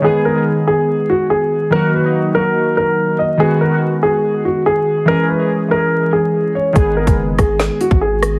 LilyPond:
<<
  \new Staff \with { instrumentName = "Grand piano" } { \time 4/4 \key gis \minor \tempo 4 = 143 gis'8 ais'8 r8 gis'4 fis'8 gis'4 | ais'8 b'8 r8 ais'4 ais'4 dis''8 | gis'8 ais'8 r8 gis'4 fis'8 gis'4 | ais'8 b'8 r8 ais'4 gis'4 cis''8 |
gis'8 ais'8 r8 gis'4 fis'8 gis'4 | }
  \new Staff \with { instrumentName = "Synth keys" } { \time 4/4 \key gis \minor <dis gis b gis'>8. <dis gis b gis'>4.~ <dis gis b gis'>16 r4. | <dis fis ais fis'>8. <dis fis ais dis'>8. <dis fis ais fis'>4.~ <dis fis ais fis'>16 r8. | <dis gis b fis'>8. <dis gis b fis'>4.~ <dis gis b fis'>16 r4. | <e gis cis' gis'>8. <e gis cis' gis'>8. <e gis cis' gis'>4.~ <e gis cis' gis'>16 r8. |
<dis gis b gis'>8. <dis gis b gis'>4.~ <dis gis b gis'>16 r4. | }
  \new Staff \with { instrumentName = "808-style bass" } { \clef bass \time 4/4 \key gis \minor r1 | r1 | r1 | r1 |
gis,,8. fis,,8. gis,,8. r8 gis,,4~ gis,,16 | }
  \new DrumStaff \with { instrumentName = "Drums" } \drummode { \time 4/4 r4 r4 r4 r4 | r4 r4 r4 r4 | r4 r4 r4 r4 | r4 r4 r4 r4 |
<hh bd>8. <hh bd>16 r8 <hh bd ss>8 <hh sn>8 hh16 bd16 r8 <hh ss>8 | }
>>